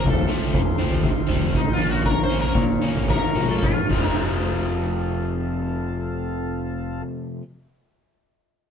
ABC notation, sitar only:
X:1
M:4/4
L:1/16
Q:1/4=105
K:none
V:1 name="Sitar"
A2 z8 z2 (3_E2 F2 _G2 | (3_B2 c2 B2- B z3 B3 A F4 | z16 | z16 |]